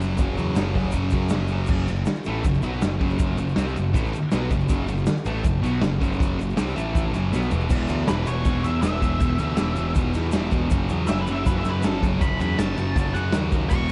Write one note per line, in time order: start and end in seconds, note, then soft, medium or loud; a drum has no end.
0.00 0.18 F#1 medium
0.00 0.17 F#2 medium
0.00 0.18 C#3 medium
0.00 0.18 F#3 loud
0.00 open hi-hat medium
0.00 shaker medium
0.18 0.37 F#1 loud
0.18 0.35 F#2 loud
0.18 0.37 C#3 medium
0.18 0.36 F#3 loud
0.18 kick loud
0.18 open hi-hat medium
0.18 shaker medium
0.36 0.56 E2 medium
0.36 0.54 F#2 medium
0.36 0.56 C#3 medium
0.36 0.56 F#3 loud
0.36 open hi-hat medium
0.36 shaker medium
0.55 0.75 F#1 medium
0.55 0.73 F#2 medium
0.55 0.74 C#3 medium
0.55 0.74 F#3 medium
0.55 snare loud
0.55 open hi-hat medium
0.55 shaker loud
0.74 0.93 F#1 loud
0.74 0.92 F#2 medium
0.74 0.93 C#3 medium
0.74 0.94 F#3 loud
0.74 kick medium
0.74 open hi-hat medium
0.85 kick medium
0.92 1.12 F#1 loud
0.92 1.11 F#2 loud
0.92 1.12 C#3 loud
0.92 1.12 F#3 loud
0.92 kick medium
0.92 open hi-hat medium
0.92 shaker medium
1.10 1.30 F#2 medium
1.10 1.31 F#2 medium
1.10 1.31 C#3 medium
1.10 1.31 F#3 loud
1.10 kick medium
1.10 open hi-hat medium
1.10 shaker medium
1.29 1.68 F#1 medium
1.29 1.49 F#2 loud
1.29 1.50 C#3 loud
1.29 1.50 F#3 loud
1.29 snare loud
1.29 open hi-hat medium
1.29 shaker loud
1.48 1.68 F#2 medium
1.48 1.68 C#3 loud
1.48 1.69 F#3 medium
1.48 open hi-hat medium
1.48 shaker medium
1.67 1.87 F#1 loud
1.67 1.88 F#2 loud
1.67 1.88 C#3 loud
1.67 kick loud
1.67 crash loud
1.67 shaker medium
1.71 1.88 F#3 loud
1.87 2.06 F#1 medium
1.87 2.04 F#2 medium
1.87 2.04 C#3 medium
1.87 ride medium
1.87 shaker medium
1.96 shaker soft
2.06 snare loud
2.06 ride loud
2.06 shaker medium
2.15 shaker soft
2.24 2.44 A1 loud
2.24 2.44 A2 medium
2.24 2.45 E3 loud
2.24 2.45 A3 loud
2.24 ride medium
2.24 shaker medium
2.44 2.62 F#1 medium
2.44 2.59 F#2 medium
2.44 2.60 C#3 medium
2.44 kick loud
2.44 ride loud
2.44 shaker loud
2.54 shaker soft
2.62 2.82 B1 medium
2.62 2.81 B2 medium
2.62 2.81 F#3 medium
2.62 2.81 B3 loud
2.62 ride medium
2.62 shaker medium
2.82 3.00 F#1 medium
2.82 2.97 F#2 medium
2.82 2.97 C#3 medium
2.82 snare loud
2.82 ride loud
2.82 shaker loud
2.99 3.36 F#1 loud
2.99 3.36 F#2 medium
2.99 3.37 C#3 loud
2.99 3.38 F#3 loud
2.99 kick medium
2.99 ride medium
3.10 shaker soft
3.19 kick loud
3.19 ride loud
3.19 shaker loud
3.38 3.56 F#1 medium
3.38 3.53 F#2 medium
3.38 3.54 C#3 medium
3.38 ride medium
3.38 shaker medium
3.49 shaker soft
3.56 3.75 C2 loud
3.56 3.75 C3 loud
3.56 3.75 G3 loud
3.56 3.76 C4 medium
3.56 snare loud
3.56 ride loud
3.56 shaker loud
3.68 shaker soft
3.75 3.93 F#1 medium
3.75 3.90 F#2 medium
3.75 3.91 C#3 medium
3.75 ride medium
3.75 shaker medium
3.93 4.12 A1 medium
3.93 4.12 A2 loud
3.93 4.13 E3 loud
3.93 4.13 A3 loud
3.93 kick loud
3.93 ride loud
3.93 shaker loud
4.06 shaker soft
4.13 muted distorted electric guitar stroke medium
4.13 muted picked electric bass stroke soft
4.13 ride medium
4.13 shaker medium
4.31 4.50 B1 medium
4.31 4.50 B2 loud
4.31 4.50 F#3 loud
4.31 4.51 B3 loud
4.31 snare loud
4.31 ride loud
4.31 shaker loud
4.51 4.68 F#1 medium
4.51 4.66 F#2 medium
4.51 4.66 C#3 medium
4.51 kick medium
4.51 ride medium
4.51 shaker medium
4.60 shaker soft
4.68 4.87 F#1 loud
4.68 4.87 F#2 loud
4.68 4.88 C#3 loud
4.68 4.88 F#3 loud
4.68 kick loud
4.68 ride loud
4.68 shaker loud
4.88 5.06 F#1 medium
4.88 5.04 F#2 medium
4.88 5.04 C#3 medium
4.88 ride medium
4.88 shaker medium
4.97 shaker soft
5.06 snare loud
5.06 ride loud
5.06 shaker loud
5.16 shaker soft
5.25 5.44 A1 loud
5.25 5.44 A2 medium
5.25 5.45 E3 medium
5.25 5.45 A3 loud
5.25 ride medium
5.25 shaker medium
5.44 5.62 F#1 medium
5.44 5.60 F#2 medium
5.44 5.60 C#3 medium
5.44 kick loud
5.44 ride loud
5.44 shaker medium
5.62 5.81 B1 medium
5.62 5.81 B2 loud
5.62 5.82 F#3 loud
5.62 5.82 B3 loud
5.62 ride medium
5.62 shaker medium
5.81 6.00 F#1 medium
5.81 5.97 F#2 medium
5.81 5.97 C#3 medium
5.81 snare loud
5.81 ride loud
5.81 shaker medium
6.00 6.36 F#1 loud
6.00 6.37 F#2 medium
6.00 6.37 C#3 loud
6.00 6.38 F#3 loud
6.00 kick medium
6.00 ride medium
6.00 shaker medium
6.12 shaker soft
6.20 kick loud
6.20 ride loud
6.20 shaker medium
6.38 6.57 F#1 medium
6.38 6.54 F#2 medium
6.38 6.54 C#3 medium
6.38 ride medium
6.38 shaker medium
6.50 shaker soft
6.56 6.76 C2 medium
6.56 6.75 C3 loud
6.56 6.75 G3 loud
6.56 6.76 C4 loud
6.56 snare loud
6.56 ride loud
6.56 shaker medium
6.69 shaker soft
6.76 7.12 A1 loud
6.76 7.13 A2 medium
6.76 7.13 E3 loud
6.76 7.14 A3 loud
6.76 ride medium
6.76 shaker medium
6.95 kick loud
6.95 ride medium
6.95 shaker medium
7.12 7.32 F#1 medium
7.12 7.31 F#2 loud
7.12 7.31 C#3 loud
7.12 7.31 F#3 loud
7.12 snare soft
7.12 ride medium
7.12 shaker medium
7.31 7.51 B1 loud
7.31 7.50 B2 loud
7.31 7.51 F#3 loud
7.31 7.51 B3 loud
7.31 snare medium
7.31 shaker medium
7.42 shaker soft
7.51 7.70 E1 medium
7.51 7.68 E2 loud
7.51 7.68 B2 loud
7.51 7.69 E3 loud
7.51 floor tom loud
7.51 shaker medium
7.61 shaker soft
7.69 7.88 E1 medium
7.69 7.88 E2 loud
7.69 7.88 B2 loud
7.69 7.89 E3 loud
7.69 kick loud
7.69 crash loud
7.69 shaker medium
7.88 8.07 D2 medium
7.88 8.06 E2 medium
7.88 8.06 B2 medium
7.88 8.07 E3 loud
7.88 ride medium
7.88 shaker medium
8.06 8.26 E1 loud
8.06 8.25 E2 medium
8.06 8.25 B2 loud
8.06 8.27 E3 loud
8.06 8.27 B4 loud
8.06 snare loud
8.06 ride loud
8.06 shaker medium
8.26 8.45 E1 loud
8.26 8.44 E2 loud
8.26 8.44 B2 loud
8.26 8.46 E3 medium
8.26 8.63 C#5 medium
8.26 ride medium
8.26 shaker medium
8.45 8.63 E1 medium
8.45 8.63 E2 loud
8.45 8.63 B2 loud
8.45 8.64 E3 loud
8.45 kick loud
8.45 ride loud
8.45 shaker medium
8.64 8.82 E2 loud
8.64 8.83 E2 medium
8.64 8.83 B2 loud
8.64 8.84 E3 loud
8.64 8.81 E5 medium
8.64 snare soft
8.64 ride medium
8.64 shaker medium
8.82 9.19 E1 loud
8.82 9.01 E2 medium
8.82 9.02 B2 medium
8.82 9.02 E3 loud
8.82 9.92 E5 medium
8.82 snare loud
8.82 ride loud
8.82 shaker loud
9.02 9.19 E2 medium
9.02 9.19 B2 medium
9.02 9.21 E3 loud
9.02 kick medium
9.02 ride medium
9.02 shaker medium
9.20 9.39 E1 loud
9.20 9.38 E2 loud
9.20 9.39 B2 loud
9.20 9.40 E3 loud
9.20 kick loud
9.20 ride loud
9.20 shaker medium
9.38 9.57 D2 medium
9.38 9.57 E2 medium
9.38 9.58 B2 medium
9.38 9.58 E3 loud
9.38 ride medium
9.38 shaker medium
9.57 9.77 E1 loud
9.57 9.75 E2 medium
9.57 9.76 B2 medium
9.57 9.77 E3 loud
9.57 snare loud
9.57 ride loud
9.57 shaker loud
9.76 9.95 E1 loud
9.76 9.95 E2 medium
9.76 9.95 B2 medium
9.76 9.96 E3 medium
9.76 ride medium
9.76 shaker medium
9.95 10.14 E1 medium
9.95 10.14 E2 loud
9.95 10.15 B2 loud
9.95 10.15 E3 loud
9.95 kick loud
9.95 ride loud
9.95 shaker medium
10.14 10.32 E2 loud
10.14 10.33 E2 medium
10.14 10.33 B2 medium
10.14 10.34 E3 loud
10.14 snare soft
10.14 ride medium
10.14 shaker medium
10.32 10.70 E1 medium
10.32 10.51 E2 loud
10.32 10.51 B2 medium
10.32 10.52 E3 loud
10.32 snare loud
10.32 ride loud
10.32 shaker loud
10.51 10.70 E2 medium
10.51 10.70 B2 medium
10.51 10.70 E3 loud
10.51 kick medium
10.51 ride medium
10.51 shaker medium
10.71 10.89 F#1 loud
10.71 10.90 F#2 medium
10.71 10.89 C#3 loud
10.71 10.91 F#3 loud
10.71 kick loud
10.71 ride loud
10.71 shaker loud
10.89 11.08 E2 loud
10.89 11.08 F#2 medium
10.89 11.08 C#3 loud
10.89 11.09 F#3 loud
10.89 ride medium
10.89 shaker medium
11.07 11.27 F#1 loud
11.07 11.26 F#2 medium
11.07 11.26 C#3 medium
11.07 11.27 F#3 loud
11.07 11.20 E5 loud
11.07 snare loud
11.07 ride loud
11.07 shaker loud
11.21 11.33 B4 medium
11.26 11.46 F#1 loud
11.26 11.44 F#2 medium
11.26 11.45 C#3 loud
11.26 11.45 F#3 loud
11.26 ride medium
11.26 shaker medium
11.32 11.45 E5 loud
11.46 11.64 F#1 loud
11.46 11.62 F#2 loud
11.46 11.63 C#3 loud
11.46 11.64 F#3 loud
11.46 11.58 B4 loud
11.46 kick loud
11.46 ride loud
11.46 shaker loud
11.57 11.70 E5 loud
11.63 11.80 F#2 loud
11.63 11.83 F#2 medium
11.63 11.81 C#3 loud
11.63 11.81 F#3 loud
11.63 snare soft
11.63 ride medium
11.63 shaker medium
11.70 11.84 B4 medium
11.81 12.20 F#1 loud
11.81 11.99 F#2 loud
11.81 12.00 C#3 loud
11.81 12.00 F#3 loud
11.81 12.02 A4 loud
11.81 snare loud
11.81 ride loud
11.81 shaker loud
12.00 12.18 F#2 medium
12.00 12.19 C#3 medium
12.00 12.20 F#3 loud
12.00 kick medium
12.00 ride medium
12.00 shaker medium
12.19 12.39 F#1 loud
12.19 12.39 F#2 loud
12.19 12.40 C#3 loud
12.19 12.40 F#3 loud
12.19 12.39 B5 loud
12.19 kick loud
12.19 ride loud
12.19 shaker medium
12.40 12.58 E2 loud
12.40 12.57 F#2 medium
12.40 12.57 C#3 medium
12.40 12.58 F#3 loud
12.40 12.59 B5 loud
12.40 ride medium
12.40 shaker medium
12.58 12.76 F#1 medium
12.58 12.75 F#2 medium
12.58 12.76 C#3 loud
12.58 12.77 F#3 loud
12.58 13.13 A5 loud
12.58 snare loud
12.58 ride loud
12.58 shaker loud
12.77 12.95 F#1 loud
12.77 12.95 F#2 medium
12.77 12.96 C#3 medium
12.77 12.96 F#3 medium
12.77 ride medium
12.77 shaker medium
12.96 13.14 F#1 loud
12.96 13.14 F#2 loud
12.96 13.14 C#3 loud
12.96 13.15 F#3 loud
12.96 kick loud
12.96 ride loud
12.96 shaker medium
13.14 13.33 F#2 medium
13.14 13.34 C#3 medium
13.14 13.35 F#3 loud
13.14 13.33 F#5 loud
13.14 ride medium
13.14 shaker medium
13.32 13.70 D#2 loud
13.32 13.52 F#2 loud
13.32 13.52 C#3 loud
13.32 13.53 F#3 loud
13.32 snare loud
13.32 ride loud
13.32 shaker loud
13.52 13.70 F#2 medium
13.52 13.71 C#3 medium
13.52 13.71 F#3 medium
13.52 kick medium
13.52 ride medium
13.52 shaker medium
13.70 13.89 E1 loud
13.70 13.90 E2 medium
13.70 13.90 B2 loud
13.70 13.91 E3 loud
13.70 13.92 C#6 loud
13.70 kick loud
13.70 crash loud
13.70 shaker medium
13.88 shaker medium